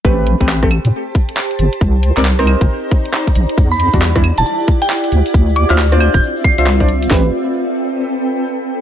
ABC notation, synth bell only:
X:1
M:4/4
L:1/16
Q:"Swing 16ths" 1/4=136
K:Am
V:1 name="Synth bell"
z16 | z16 | z b4 z2 a a z2 g z4 | z2 d' f' z2 g' g' z2 c'' c'' z4 |
z16 |]